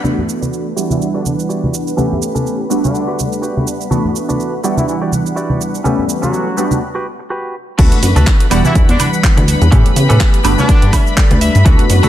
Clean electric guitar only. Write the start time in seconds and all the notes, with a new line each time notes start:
0.04 D4 F#4 B4
0.41 D4 F#4 B4
0.76 E4 F#4 G4 D5
1.14 E4 F#4 G4 D5
1.39 muted clean electric guitar stroke
1.49 E4 F#4 G4 D5
1.97 C#4 G4 A4 B4
2.35 C#4 G4 A4 B4
2.70 F#4 G4 B4
3.07 F#4 G4 B4
3.32 muted clean electric guitar stroke
3.42 F#4 G4 B4
3.91 D4 F#4 B4
4.29 D4 F#4 B4
4.64 E4 F#4 G4 D5
5.01 E4 F#4 G4 D5
5.26 muted clean electric guitar stroke
5.36 E4 F#4 G4 D5
5.84 C#4 G4 A4 B4
6.22 C#4 G4 A4 B4
6.57 F#4 G4 B4
6.95 F#4 G4 B4
7.19 muted clean electric guitar stroke
7.30 F#4 G4 B4
7.78 D4 F#4 A4 B4
8.16 D4 F#4 A4 B4
8.51 E4 F#4 G4 D5
8.99 muted clean electric guitar stroke
9.37 muted clean electric guitar stroke
9.48 muted clean electric guitar stroke
9.71 C#4 G4 A4 B4
10.09 C#4 G4 A4 B4
10.44 D4 F#4 G4 B4 B5
10.69 G5
10.93 E5, muted clean electric guitar stroke
11.17 D5
11.30 muted clean electric guitar stroke
11.41 E5, muted clean electric guitar stroke
11.65 D4 F#4 A4 B4
12.03 D4 F#4 A4 B4